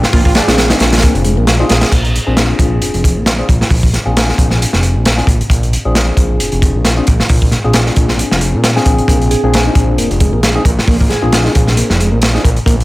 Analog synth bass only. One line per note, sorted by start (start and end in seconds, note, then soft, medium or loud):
0.13 0.40 A#1 loud
0.48 0.74 A#1 medium
0.80 1.07 A#1 loud
1.15 1.39 F1 medium
1.37 1.64 A#1 medium
1.70 1.84 A#1 loud
1.92 2.19 A#1 medium
2.27 2.53 A#1 medium
2.59 2.81 A#1 medium
2.82 2.92 F1 soft
2.94 3.19 F1 medium
3.17 3.43 A#1 medium
3.49 3.63 A#1 loud
3.71 3.98 A#1 loud
4.06 4.32 A#1 medium
4.38 4.65 A#1 medium
4.74 4.98 F1 medium
4.96 5.22 A#1 medium
5.27 5.42 A#1 loud
5.50 5.77 A#1 loud
5.86 6.12 A#1 medium
6.17 6.40 A#1 medium
6.40 6.50 F1 soft
6.53 6.76 F1 medium
6.75 7.01 A#1 medium
7.08 7.22 A#1 loud
7.30 7.57 A#1 medium
7.64 7.91 A#1 medium
7.97 8.24 A#1 medium
8.31 8.55 F1 medium
8.54 8.80 A#2 medium
8.86 9.01 A#1 medium
9.08 9.35 A#1 loud
9.43 9.70 A#1 medium
9.75 9.98 A#1 medium
9.99 10.08 F1 soft
10.11 10.34 F1 medium
10.33 10.59 A#1 medium
10.65 10.80 A#1 loud
10.88 11.15 A#1 loud
11.23 11.49 A#1 medium
11.56 11.82 A#1 medium
11.90 12.14 F1 medium
12.12 12.38 A#1 medium
12.45 12.59 A#1 loud
12.66 12.84 A#1 loud